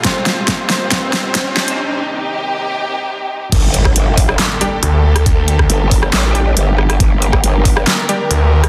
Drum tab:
CC |----------------|----------------|x---------------|----------------|
HH |x-x-x-o-x-x-x--x|----------------|x-x-x-o-x-x-x--x|x-x-x-o-x-x-x--x|
CP |----------------|----------------|--------x-------|--------x-------|
SD |o-o-o-o-o-o-o-o-|----------------|---r---ro------r|---r---ro-----rr|
BD |o---o---o---o---|----------------|o--o--o---------|o--o--o---------|

CC |----------------|
HH |x-x-x-o-x-x-x--x|
CP |--------x-------|
SD |---r---ro------r|
BD |o--o--o---------|